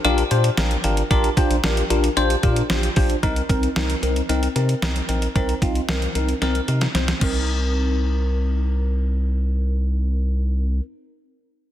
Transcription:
0.05 A#1 D4 F4 G4 A#4, closed hi-hat
0.18 closed hi-hat
0.31 A#2 D4 F4 G4 C5, closed hi-hat
0.44 closed hi-hat
0.57 A#1 D4 F4 G4 A#4, snare, closed hi-hat
0.71 closed hi-hat
0.84 G#1 D4 F4 G4 A#4, closed hi-hat
0.97 closed hi-hat
1.11 A#1 D4 F4 G4 A#4, kick, closed hi-hat
1.24 closed hi-hat
1.37 D4 F4 G4 C5, kick, closed hi-hat
1.50 A#1, closed hi-hat
1.64 A#1 D4 F4 G4 A#4, snare, closed hi-hat
1.77 closed hi-hat
1.90 A#1 D4 F4 G4 A#4, closed hi-hat
2.04 closed hi-hat
2.17 A#1 D4 F4 G4 C5, closed hi-hat
2.30 closed hi-hat
2.43 A#2 D4 F4 G4 A#4, kick, closed hi-hat
2.56 closed hi-hat
2.70 A#1 D4 F4 G4 C5, snare, closed hi-hat
2.83 closed hi-hat
2.96 A#1 D4 F4 G4 C5, kick, open hi-hat
3.10 closed hi-hat
3.23 C2 C4 D#4 A#4, kick, closed hi-hat
3.36 closed hi-hat
3.49 C2 C4 D#4 A#4, kick, closed hi-hat
3.63 closed hi-hat
3.76 C2 C4 D#4 A#4, snare, closed hi-hat
3.90 closed hi-hat
4.03 C2 C4 D#4 A#4, closed hi-hat
4.16 closed hi-hat
4.29 C2 C4 D#4 A#4, closed hi-hat
4.43 closed hi-hat
4.56 C3 C4 D#4 A#4, closed hi-hat
4.69 closed hi-hat
4.82 C2 C4 D#4 A#4, snare, closed hi-hat
4.96 closed hi-hat
5.09 A#1 C4 D#4 A#4, closed hi-hat
5.22 closed hi-hat
5.36 C2 C4 D#4 A#4, kick, closed hi-hat
5.49 closed hi-hat
5.62 C2 C4 D#4 F4, kick, closed hi-hat
5.75 closed hi-hat
5.89 C2 C4 D#4 A#4, snare, closed hi-hat
6.02 closed hi-hat
6.15 C2 C4 D#4 A#4, closed hi-hat
6.29 closed hi-hat
6.42 C2 C4 D#4 A#4, snare, closed hi-hat
6.55 closed hi-hat
6.68 C3 C4 D#4 A#4, closed hi-hat
6.81 snare, closed hi-hat
6.95 C2 C4 D#4 C5, snare, closed hi-hat
7.08 snare, closed hi-hat
7.19 C2 C4 D#4, kick, crash
7.23 A#4

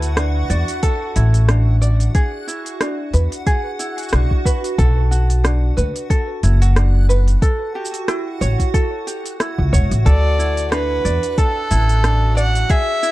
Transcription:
Already playing: D2 E4 F#4 A4 F#5
0.02 open hi-hat, cabasa
0.17 D4, cross-stick, open hi-hat, cabasa
0.50 E2 D5, open hi-hat, cabasa
0.68 open hi-hat, cabasa
0.83 A4, kick, open hi-hat, cabasa
1.16 A1 E4, open hi-hat, cabasa
1.34 open hi-hat, cabasa
1.49 D4, cross-stick, open hi-hat, cabasa
1.82 D5, cabasa
2.00 open hi-hat, cabasa
2.15 G#4, kick, open hi-hat, cabasa
2.47 E4, cabasa
2.66 open hi-hat, cabasa
2.81 D4, cross-stick, open hi-hat, cabasa
3.13 E2 B4, open hi-hat, cabasa
3.32 open hi-hat, cabasa
3.46 G#4, kick, open hi-hat, cabasa
3.79 E4, open hi-hat, cabasa
3.98 open hi-hat, cabasa
4.03 cabasa
4.09 B1 D4, cross-stick, open hi-hat, cabasa
4.13 cabasa
4.31 kick
4.45 B4, kick, cabasa
4.64 open hi-hat, cabasa
4.78 B1 A4, kick, open hi-hat, cabasa
5.11 F#4, cabasa
5.30 open hi-hat, cabasa
5.44 D4, cross-stick, open hi-hat, cabasa
5.77 D2 B4, open hi-hat, cabasa
5.96 open hi-hat, cabasa
6.10 A4, kick, open hi-hat, cabasa
6.43 F#1 E4, open hi-hat, cabasa
6.61 F#4, open hi-hat, cabasa
6.76 D4, cross-stick, open hi-hat, cabasa
7.09 B4, cabasa
7.28 open hi-hat, cabasa
7.42 A4, kick, open hi-hat, cabasa
7.75 G4
7.85 cabasa
7.94 open hi-hat, cabasa
8.08 E4, cross-stick, open hi-hat, cabasa
8.41 A1 C#5, open hi-hat, cabasa
8.60 kick, open hi-hat, cabasa
8.74 A4, kick, open hi-hat, cabasa
9.07 G4, open hi-hat, cabasa
9.26 open hi-hat, cabasa
9.40 E4, cross-stick, open hi-hat, cabasa
9.58 C#2, kick
9.73 E1 C#5, kick, cabasa
9.91 A1, open hi-hat, cabasa
10.06 D2 A4 D5, kick, open hi-hat, cabasa
10.39 E4, cabasa
10.57 open hi-hat, cabasa
10.72 D4 B4, cross-stick, open hi-hat, cabasa
11.05 E2 D5, open hi-hat, cabasa
11.23 open hi-hat, cabasa
11.32 B4
11.38 A4, kick, open hi-hat, cabasa
11.71 A1 E4, open hi-hat, cabasa
11.89 open hi-hat, cabasa
12.04 D4, cross-stick, open hi-hat, cabasa
12.37 D5 F#5, cabasa
12.55 open hi-hat, cabasa
12.70 G#4 E5, kick, open hi-hat, cabasa
13.03 E4, cabasa

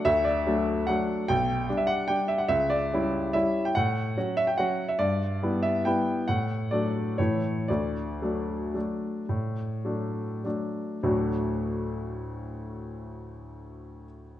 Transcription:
0.05 D2 E5
0.24 D5
0.46 F#3 A3 D4
0.87 F#3 A3 D4 F#5
1.28 B1 G5
1.69 G3 D4
1.77 E5
1.87 F#5
2.08 G3 D4 G5
2.28 E5
2.38 F#5
2.48 C#2 E5
2.70 D5
2.93 G3 C#4 E4
3.33 G3 C#4 E4 E5
3.65 G5
3.75 A2 F#5
4.17 F#3 C#4 F#4
4.37 E5
4.47 G5
4.58 F#3 C#4 F#4 F#5
4.88 E5
4.99 G2 D5
5.42 G3 B3 E4
5.63 E5
5.85 G3 B3 E4 G5
6.28 A2 F#5
6.71 F#3 A3 D4 D5
7.18 A2 E3 A3 E4 C#5
7.68 D2 D5
8.22 F#3 A3 D4
8.74 F#3 A3 D4
9.29 A2
9.85 F#3 A3 D4
10.44 F#3 A3 D4
11.03 D2 A2 F#3 A3 D4 F#4

